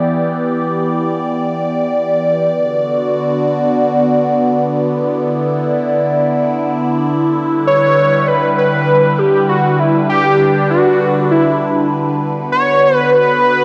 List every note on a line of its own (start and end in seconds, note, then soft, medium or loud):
0.00 2.48 E3 medium
0.00 2.48 B3 medium
0.00 2.48 G4 medium
0.00 7.33 D5 medium
2.52 13.64 D3 medium
2.52 7.33 B3 medium
2.52 4.92 F#4 medium
4.94 9.75 E4 medium
7.37 12.18 G3 medium
7.37 13.64 B4 medium
7.67 8.29 C#5 loud
8.28 8.58 B4 loud
8.58 9.20 B4 loud
9.19 9.48 G4 loud
9.49 9.81 F#4 loud
9.79 12.19 D4 medium
9.79 10.09 E4 medium
10.09 10.66 G4 loud
10.70 11.27 F#4 loud
11.31 11.88 E4 medium
12.21 13.64 B3 medium
12.21 13.64 F#4 medium
12.52 12.96 C#5 loud
12.96 13.13 B4 loud
13.13 13.64 B4 loud